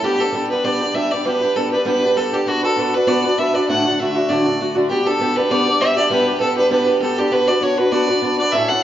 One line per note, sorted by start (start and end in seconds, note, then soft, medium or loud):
0.02 0.19 G3 medium
0.02 0.20 B3 medium
0.02 0.19 D4 medium
0.02 0.22 G4 loud
0.02 0.17 G4 medium
0.19 0.32 B3 soft
0.19 0.33 D4 soft
0.19 0.33 G4 soft
0.19 0.49 A4 medium
0.32 0.49 G3 medium
0.32 0.50 B3 medium
0.32 0.50 D4 medium
0.32 0.49 G4 medium
0.50 0.63 B3 soft
0.50 0.64 D4 soft
0.50 0.64 G4 medium
0.50 0.66 B4 medium
0.64 0.80 G3 medium
0.64 0.81 B3 medium
0.64 0.80 D4 medium
0.64 0.79 G4 medium
0.64 0.96 D5 medium
0.80 0.94 B3 soft
0.80 0.94 D4 soft
0.80 0.94 G4 soft
0.94 1.11 G3 medium
0.94 1.11 B3 medium
0.94 1.11 D4 medium
0.94 1.10 G4 medium
0.94 1.13 E5 medium
1.11 1.25 B3 soft
1.11 1.26 D4 soft
1.11 1.25 G4 soft
1.11 1.27 D5 medium
1.25 1.42 G3 medium
1.25 1.42 B3 medium
1.25 1.42 D4 medium
1.25 1.40 G4 medium
1.25 1.58 B4 loud
1.41 1.56 B3 soft
1.41 1.56 D4 soft
1.41 1.55 G4 medium
1.56 1.72 G3 medium
1.56 1.72 B3 medium
1.56 1.72 D4 medium
1.56 1.71 G4 medium
1.56 1.71 A4 medium
1.72 1.84 B3 soft
1.72 1.85 D4 soft
1.72 1.86 G4 medium
1.72 1.85 B4 medium
1.85 2.02 G3 medium
1.85 2.02 B3 medium
1.85 2.02 D4 medium
1.85 2.01 G4 medium
1.85 2.19 B4 loud
2.02 2.16 B3 soft
2.02 2.17 D4 soft
2.02 2.16 G4 medium
2.16 2.32 G3 medium
2.16 2.33 B3 soft
2.16 2.33 D4 medium
2.16 2.31 G4 medium
2.16 2.35 A4 medium
2.32 2.45 B3 soft
2.32 2.46 D4 medium
2.32 2.46 G4 medium
2.32 2.50 G4 medium
2.46 2.63 B3 medium
2.46 2.63 D4 medium
2.46 2.63 F#4 medium
2.46 2.64 F#4 loud
2.46 2.62 B4 medium
2.63 2.76 D4 soft
2.63 2.77 F#4 soft
2.63 2.96 A4 medium
2.63 2.77 B4 medium
2.76 2.93 B3 medium
2.76 2.94 D4 medium
2.76 2.94 F#4 medium
2.76 2.93 B4 medium
2.94 3.06 D4 soft
2.94 3.07 F#4 soft
2.94 3.08 B4 medium
2.94 3.09 B4 loud
3.07 3.24 B3 medium
3.07 3.24 D4 medium
3.07 3.24 F#4 medium
3.07 3.23 B4 medium
3.07 3.40 D5 medium
3.24 3.38 D4 soft
3.24 3.38 F#4 soft
3.24 3.38 B4 soft
3.38 3.54 B3 medium
3.38 3.55 D4 medium
3.38 3.54 F#4 soft
3.38 3.53 B4 medium
3.38 3.56 E5 medium
3.54 3.68 D4 soft
3.54 3.69 F#4 soft
3.54 3.68 B4 medium
3.54 3.68 D5 medium
3.68 3.85 D2 medium
3.68 3.85 A2 medium
3.68 3.85 D3 medium
3.68 3.85 A3 medium
3.68 3.85 D4 medium
3.68 3.84 F#4 medium
3.68 3.93 F#5 loud
3.85 3.98 D3 soft
3.85 3.99 A3 soft
3.85 3.99 D4 soft
3.85 3.99 F#4 soft
3.93 4.01 F#5 medium
3.99 4.15 D3 medium
3.99 4.15 A3 medium
3.99 4.16 D4 medium
3.99 4.14 F#4 medium
3.99 4.30 E5 medium
4.15 4.28 D3 soft
4.15 4.29 A3 medium
4.15 4.29 D4 soft
4.15 4.29 F#4 medium
4.29 4.45 D2 medium
4.29 4.45 A2 medium
4.29 4.46 D3 medium
4.29 4.45 A3 medium
4.29 4.46 D4 medium
4.29 4.44 F#4 medium
4.29 4.75 D5 medium
4.45 4.58 D3 soft
4.45 4.60 A3 medium
4.45 4.59 D4 soft
4.45 4.59 F#4 soft
4.59 4.76 D3 soft
4.59 4.75 A3 medium
4.59 4.75 D4 medium
4.59 4.74 F#4 medium
4.75 4.89 D3 soft
4.75 4.90 A3 medium
4.75 4.89 D4 soft
4.75 4.89 F#4 medium
4.89 5.06 G3 medium
4.89 5.06 B3 medium
4.89 5.06 D4 medium
4.89 5.08 G4 medium
4.89 5.05 G4 medium
5.06 5.19 B3 soft
5.06 5.20 D4 soft
5.06 5.20 G4 soft
5.06 5.38 A4 loud
5.20 5.36 G3 medium
5.20 5.37 B3 medium
5.20 5.37 D4 medium
5.20 5.35 G4 medium
5.36 5.50 B3 soft
5.36 5.50 D4 medium
5.36 5.50 G4 medium
5.36 5.52 B4 loud
5.50 5.66 G3 medium
5.50 5.67 B3 medium
5.50 5.67 D4 medium
5.50 5.65 G4 medium
5.50 5.83 D5 loud
5.66 5.80 B3 soft
5.66 5.81 D4 soft
5.66 5.80 G4 medium
5.80 5.97 G3 medium
5.80 5.97 B3 medium
5.80 5.97 D4 medium
5.80 5.95 G4 medium
5.80 5.94 E5 medium
5.94 6.10 D4 soft
5.94 6.11 G4 soft
5.94 6.11 D5 medium
5.94 5.98 E5 medium
5.99 6.10 B3 soft
6.10 6.27 G3 medium
6.10 6.27 B3 medium
6.10 6.26 D4 medium
6.10 6.25 G4 medium
6.10 6.39 B4 loud
6.26 6.40 B3 soft
6.26 6.41 D4 soft
6.26 6.41 G4 medium
6.40 6.57 G3 medium
6.40 6.57 B3 medium
6.40 6.57 D4 medium
6.40 6.55 G4 medium
6.40 6.56 A4 medium
6.56 6.69 B3 soft
6.56 6.70 D4 medium
6.56 6.70 G4 medium
6.56 6.70 B4 loud
6.70 6.87 G3 medium
6.70 6.87 B3 medium
6.70 6.87 D4 medium
6.70 6.85 G4 medium
6.70 6.99 B4 loud
6.87 7.01 B3 soft
6.87 7.01 D4 soft
6.87 7.01 G4 soft
7.00 7.17 G3 medium
7.00 7.18 B3 medium
7.00 7.18 D4 medium
7.00 7.17 G4 medium
7.00 7.20 A4 medium
7.18 7.30 B3 soft
7.18 7.31 D4 medium
7.18 7.33 G4 medium
7.18 7.32 G4 medium
7.31 7.48 B3 medium
7.31 7.48 D4 medium
7.31 7.48 F#4 medium
7.31 7.49 B4 loud
7.31 7.47 B4 medium
7.48 7.61 D4 soft
7.48 7.62 F#4 medium
7.48 7.62 B4 soft
7.48 7.64 D5 medium
7.61 7.78 B3 medium
7.61 7.79 D4 medium
7.61 7.78 F#4 medium
7.61 7.76 B4 medium
7.61 7.79 C#5 medium
7.77 7.91 D4 soft
7.77 7.92 F#4 medium
7.77 7.92 B4 medium
7.77 7.94 B4 loud
7.92 8.09 B3 medium
7.92 8.09 D4 medium
7.92 8.08 F#4 medium
7.92 8.07 B4 medium
7.92 8.37 D5 loud
8.08 8.21 D4 soft
8.08 8.23 F#4 medium
8.08 8.22 B4 medium
8.22 8.39 B3 medium
8.22 8.39 D4 medium
8.22 8.39 F#4 medium
8.22 8.38 B4 medium
8.38 8.53 D4 soft
8.38 8.54 F#4 soft
8.38 8.53 B4 soft
8.38 8.53 D5 medium
8.52 8.69 A2 medium
8.52 8.70 A3 medium
8.52 8.70 C#4 medium
8.52 8.69 E4 medium
8.52 8.68 A4 medium
8.52 8.70 E5 loud
8.68 8.82 C#4 soft
8.68 8.83 E4 soft
8.68 8.83 A4 soft
8.68 8.83 F#5 loud